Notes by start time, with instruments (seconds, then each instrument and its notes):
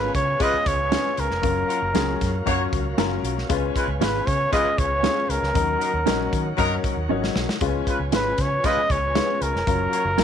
Already playing: upright piano G#3 C#4 F4 A#4, tonewheel organ B3 C#4 F4 G#4, trumpet B4
0.15 fingered electric bass C#3, trumpet C#5, kick, closed hi-hat
0.40 upright piano G#3 C#4 F4 B4, horn section G#3 F4 B4, trumpet D#5, kick, closed hi-hat
0.54 muted fingered electric bass stroke
0.66 fingered electric bass C#2, trumpet C#5, kick, closed hi-hat
0.91 upright piano G#3 C#4 F4 G#4, clean electric guitar C#4 F4 B4, snare, closed hi-hat
1.17 fingered electric bass C#2, trumpet A#4, closed hi-hat
1.31 fingered electric bass F1, snare
1.42 fingered electric bass F#1, upright piano F#3 C#4 F4 A#4, tonewheel organ F#3 A#3, kick, closed hi-hat
1.68 horn section F#3 F4 A#4, closed hi-hat
1.82 fingered electric bass F#1
1.94 fingered electric bass C#2, upright piano F#3 C#4 F4 G#4, clean electric guitar C#4 F4 A#4, snare, closed hi-hat
2.21 fingered electric bass F#2, kick, snare, closed hi-hat
2.46 fingered electric bass F#2, upright piano F#3 C#4 F4 C#5, horn section A#3 F#4 C#5, kick, closed hi-hat
2.73 fingered electric bass C#2, kick, closed hi-hat
2.97 fingered electric bass F#1, upright piano F#3 C#4 F4 A#4, clean electric guitar C#4 F4 A#4, snare, closed hi-hat
3.23 fingered electric bass B1, closed hi-hat
3.38 snare
3.49 fingered electric bass C#2, upright piano G#3 C#4 F4 B4, tonewheel organ B3 G#4, kick, closed hi-hat
3.76 horn section G#3 F4 B4, kick, closed hi-hat
3.88 fingered electric bass C#2
4.00 fingered electric bass G#1, upright piano G#3 C#4 F4 B4, clean electric guitar C#4 F4 B4, trumpet B4, snare, closed hi-hat
4.27 fingered electric bass C#3, trumpet C#5, kick, closed hi-hat
4.52 upright piano G#3 C#4 F4 G#4, horn section G#3 F4 B4, trumpet D#5, kick, closed hi-hat
4.65 muted fingered electric bass stroke
4.78 fingered electric bass C#2, trumpet C#5, kick, closed hi-hat
5.03 upright piano G#3 C#4 F4 G#4, clean electric guitar C#4 F4 B4, snare, closed hi-hat
5.29 fingered electric bass C#2, trumpet A#4, closed hi-hat
5.42 fingered electric bass C#2, snare
5.54 fingered electric bass D#2, tonewheel organ D#3 A#3 F#4, upright piano F#3 C#4 D#4 A#4, kick, closed hi-hat
5.80 horn section F#3 D#4 A#4, closed hi-hat
5.93 fingered electric bass D#2
6.06 fingered electric bass A#1, upright piano F#3 C#4 D#4 A#4, clean electric guitar C#4 F#4 A#4, snare, closed hi-hat
6.33 fingered electric bass D#3, kick, closed hi-hat
6.57 fingered electric bass F#2, horn section F#3 D#4 A#4, upright piano F#3 C#4 D#4 A#4, kick, closed hi-hat
6.84 muted fingered electric bass stroke, kick, closed hi-hat
6.97 fingered electric bass D#2
7.09 fingered electric bass G#1, upright piano F#3 C#4 D#4 C#5, clean electric guitar C#4 F#4 A#4
7.24 snare
7.35 fingered electric bass B1, snare
7.49 snare
7.61 fingered electric bass C#2, tonewheel organ F3 B3 C#4 G#4, upright piano G#3 C#4 F4 B4, kick, closed hi-hat
7.87 horn section G#3 F4 B4, kick, closed hi-hat
7.99 fingered electric bass C#2
8.12 fingered electric bass G#1, upright piano G#3 C#4 F4 B4, clean electric guitar C#4 F4 B4, trumpet B4, snare, closed hi-hat
8.38 fingered electric bass C#3, trumpet C#5, kick, snare, closed hi-hat
8.64 horn section G#3 F4 B4, upright piano G#3 C#4 F4 B4, trumpet D#5, kick, closed hi-hat
8.77 muted fingered electric bass stroke
8.90 fingered electric bass C#2, trumpet C#5, kick, closed hi-hat
9.15 upright piano G#3 C#4 F4 B4, clean electric guitar C#4 F4 B4, snare, closed hi-hat
9.41 fingered electric bass C#2, trumpet A#4, closed hi-hat
9.54 fingered electric bass F1, snare
9.66 fingered electric bass F#1, upright piano F#3 C#4 F4 A#4, tonewheel organ F#3 A#3 C#4 F4, kick, closed hi-hat
9.92 horn section A#3 F#4 C#5, closed hi-hat
10.05 fingered electric bass F#1
10.17 fingered electric bass C#2, upright piano F#3 C#4 F4 A#4, clean electric guitar C#4 F4 A#4, snare, closed hi-hat